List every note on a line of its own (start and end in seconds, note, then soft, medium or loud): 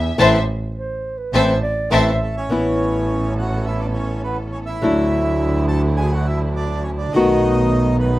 0.00 0.13 E2 medium
0.00 0.12 D4 medium
0.00 0.13 E4 medium
0.00 0.13 G#4 medium
0.00 0.18 E5 medium
0.18 0.40 A1 loud
0.18 0.37 E3 medium
0.18 0.37 A3 medium
0.18 0.37 C4 medium
0.18 0.37 E4 medium
0.18 0.37 A4 medium
0.18 0.37 C5 medium
0.18 0.38 E5 medium
0.18 0.37 A5 medium
0.75 1.19 C5 medium
1.18 1.35 B4 medium
1.33 1.55 A1 medium
1.33 1.53 E3 medium
1.33 1.53 A3 medium
1.33 1.53 C4 medium
1.33 1.53 E4 medium
1.33 1.53 A4 medium
1.33 1.62 C5 medium
1.33 1.53 C5 medium
1.33 1.53 E5 medium
1.33 1.53 A5 medium
1.62 1.90 D5 medium
1.91 2.14 A1 medium
1.91 2.10 E3 medium
1.91 2.10 A3 medium
1.91 2.10 C4 medium
1.91 2.10 E4 medium
1.91 2.10 A4 medium
1.91 2.11 C5 medium
1.91 2.11 E5 medium
1.91 2.46 E5 medium
1.91 2.11 A5 medium
2.22 2.36 A3 medium
2.22 2.35 A4 medium
2.37 3.35 C#4 medium
2.37 3.34 C#5 medium
2.50 4.71 A1 medium
2.50 4.81 E3 medium
2.50 4.71 B3 medium
2.50 4.81 B3 medium
2.50 4.71 C#4 medium
2.50 4.82 C#4 medium
2.50 4.82 E4 medium
2.50 4.71 A4 medium
3.39 3.66 F#4 medium
3.39 3.65 F#5 medium
3.66 3.80 E4 medium
3.66 3.81 E5 medium
3.80 3.88 D4 medium
3.80 3.87 D5 medium
3.94 4.23 C#4 medium
3.94 4.22 C#5 medium
4.24 4.39 B3 medium
4.24 4.37 B4 medium
4.52 4.60 C#4 medium
4.52 4.59 C#5 medium
4.66 5.66 E4 medium
4.66 5.64 E5 medium
4.82 7.03 D2 medium
4.82 7.12 D3 medium
4.82 7.02 F#3 medium
4.82 7.13 F#3 medium
4.82 7.13 A3 medium
4.82 7.02 D4 medium
4.82 7.13 D4 medium
4.82 7.02 E4 medium
4.82 7.14 E4 medium
5.68 5.82 A4 medium
5.68 5.81 A5 loud
5.97 6.12 G#4 medium
5.97 6.12 G#5 loud
6.12 6.27 F#4 medium
6.12 6.27 F#5 medium
6.26 6.42 E4 medium
6.26 6.40 E5 medium
6.56 6.84 D4 medium
6.56 6.83 D5 medium
6.83 6.92 C#4 medium
6.83 6.90 C#5 medium
6.98 7.13 D4 medium
6.98 7.12 D5 medium
7.12 8.19 B1 medium
7.12 8.19 B2 medium
7.12 8.19 D#3 medium
7.12 8.19 A3 medium
7.12 8.19 B3 medium
7.12 8.19 D#4 medium
7.12 7.97 D#4 medium
7.12 8.19 F#4 medium
7.12 7.96 D#5 loud
8.00 8.19 B3 medium
8.00 8.19 B4 medium